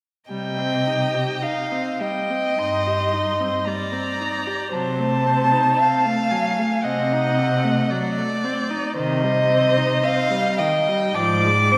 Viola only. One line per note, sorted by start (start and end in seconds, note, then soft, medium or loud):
0.30 0.59 G3 soft
0.58 0.88 C4 soft
0.87 1.15 D#4 soft
1.14 1.43 G4 soft
1.41 1.73 D#4 soft
1.72 2.02 C4 soft
2.00 2.32 G3 soft
2.30 2.58 C4 soft
2.58 2.88 D#4 soft
2.86 3.14 G4 soft
3.13 3.41 D#4 soft
3.40 3.68 C4 soft
3.66 3.94 G3 soft
3.92 4.21 C4 soft
4.20 4.48 D#4 soft
4.47 4.72 G4 soft
4.73 5.00 F#3 soft
4.98 5.26 A3 soft
5.24 5.53 C4 soft
5.51 5.80 D#4 soft
5.78 6.06 C4 soft
6.05 6.33 A3 soft
6.32 6.60 F#3 soft
6.59 6.84 A3 soft
6.85 7.14 C4 soft
7.12 7.40 D#4 soft
7.38 7.65 C4 soft
7.64 7.93 A3 soft
7.91 8.19 F#3 soft
8.18 8.45 A3 soft
8.44 8.72 C4 soft
8.70 8.96 D#4 soft
8.97 9.25 D#3 medium
9.24 9.51 G3 soft
9.50 9.78 C4 medium
9.77 10.05 D#4 soft
10.03 10.32 C4 soft
10.30 10.61 G3 medium
10.60 10.89 D#3 soft
10.88 11.16 G3 soft
11.17 11.46 F3 medium
11.45 11.74 G#3 soft
11.73 11.78 C4 soft